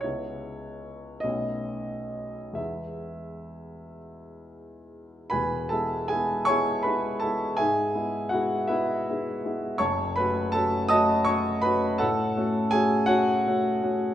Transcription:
X:1
M:12/8
L:1/8
Q:3/8=54
K:E
V:1 name="Grand piano"
c3 d3 e3 z3 | [Bgb] [Aa] [Gg] [cgc'] [Bb] [Aa] [Geg]2 [Ff] [EBe]3 | [cac'] [Bb] [Aa] [dad'] [cc'] [Bb] [Afa]2 [Gg] [Fcf]3 |]
V:2 name="Grand piano"
[C,,G,B,E]3 [B,,,A,B,C]3 [E,,G,B,E]6 | [E,,,E,,] [G,B,E] [G,B,E] [G,B,E] [G,B,E] [G,B,E] G,, [G,B,E] [G,B,E] [G,B,] [G,B,E] [G,B,E] | [F,,,F,,] [A,CF] [A,CF] [A,CF] [A,CF] [A,CF] A,, [A,CF] [A,CF] [A,C] [A,CF] [A,CF] |]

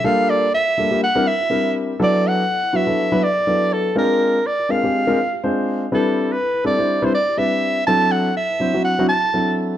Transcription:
X:1
M:4/4
L:1/16
Q:"Swing 16ths" 1/4=123
K:D
V:1 name="Soprano saxophone"
=f2 d2 e4 ^f2 e4 z2 | d2 f4 e4 d4 A2 | ^A4 d2 ^e6 z4 | A3 B3 d3 =c d2 e4 |
a2 f2 e4 f2 a4 z2 |]
V:2 name="Grand piano"
[G,_B,D=FA]3 z [F_B] [FA] [G,B,DFA] [G,B,DFG] z [G,=CDEB] [EB] [E^F] [G,CDEB]3 z | [F,B,DEA]3 z [EA] [EA] [F,B,DEF] [F,B,DEA]2 [F,B,DEB] [EA] [EA] [F,B,DEA]3 z | [^G,^B,D^E^A]3 z [E^B] [EA] [G,B,DEA] [G,B,DE=G]2 [^G,B,DEA] [EB] [E=G] [^G,B,DEB]3 z | [G,=CDEB]3 z [EB] [EB] [G,CDEA] [G,CDE=c]2 [G,CDEB] [Ec] [EG] [G,CDEB]3 z |
[F,=CDEA]3 z [EA] [EB] [F,CDE=c] [F,CDEF]2 [F,CDEF] [Ec] [EA] [F,CDEA]3 z |]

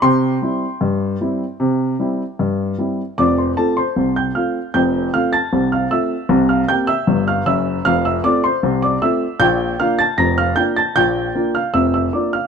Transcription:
X:1
M:2/4
L:1/16
Q:1/4=77
K:C
V:1 name="Upright piano"
[gc']8- | [gc']4 z4 | [K:F] [dd'] [cc'] [Aa] [cc']2 [gg'] [ff']2 | [gg']2 [ff'] [aa']2 [ff'] [ee']2- |
[ee'] [ff'] [gg'] [ee']2 [ff'] [ee']2 | [ff'] [ee'] [dd'] [cc']2 [dd'] [ee']2 | [gg']2 [ff'] [aa'] [bb'] [ff'] [gg'] [aa'] | [gg']3 [ff'] [ee'] [ee'] [dd'] [ff'] |]
V:2 name="Upright piano"
C,2 [G,CE]2 G,,2 [G,CE]2 | C,2 [G,CE]2 G,,2 [G,CE]2 | [K:F] [F,,,F,,]2 [A,CF]2 [C,,C,]2 [A,CF]2 | [F,,,F,,]2 [A,CF]2 [C,,C,]2 [A,CF]2 |
[C,,C,]2 [B,CG]2 [G,,,G,,]2 [_G,,,_G,,]2 | [F,,,F,,]2 [A,CF]2 [C,,C,]2 [A,CF]2 | [B,,,B,,]2 [B,DF]2 [F,,,F,,]2 [B,DF]2 | [B,,,B,,]2 [B,DF]2 [F,,,F,,]2 [B,DF]2 |]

